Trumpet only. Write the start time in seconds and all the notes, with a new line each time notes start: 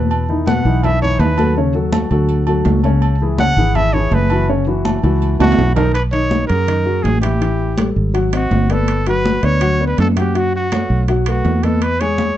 0.47 F#5
0.84 E5
1.02 C#5
1.20 B4
3.40 F#5
3.76 E5
3.94 C#5
4.14 B4
5.41 F#4
5.76 A#4
5.94 B4
6.12 C#5
6.47 A#4
7.03 G#4
7.21 G4
8.36 F#4
8.72 A4
9.09 B4
9.44 C#5
9.87 B4
10.00 A4
10.19 G4
10.37 F#4
10.56 F#4
11.28 F#4
11.64 A4
11.83 B4
12.00 C#5